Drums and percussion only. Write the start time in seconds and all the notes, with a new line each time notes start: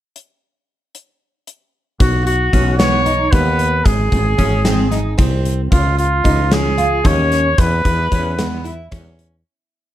0.16 closed hi-hat
0.95 closed hi-hat
1.47 closed hi-hat
2.00 kick, closed hi-hat
2.27 closed hi-hat
2.53 kick, closed hi-hat
2.80 snare, closed hi-hat
3.06 closed hi-hat
3.32 kick, closed hi-hat
3.59 closed hi-hat
3.85 kick, closed hi-hat
4.12 kick, closed hi-hat
4.39 kick, closed hi-hat
4.65 snare, closed hi-hat
4.92 snare, closed hi-hat
5.18 kick, closed hi-hat
5.45 closed hi-hat
5.72 kick, closed hi-hat
5.99 closed hi-hat
6.25 kick, closed hi-hat
6.52 snare, closed hi-hat
6.78 closed hi-hat
7.05 kick, closed hi-hat
7.32 snare, closed hi-hat
7.58 kick, closed hi-hat
7.85 kick, closed hi-hat
8.12 kick, closed hi-hat
8.39 snare, closed hi-hat
8.65 closed hi-hat
8.92 kick, snare, closed hi-hat
9.19 closed hi-hat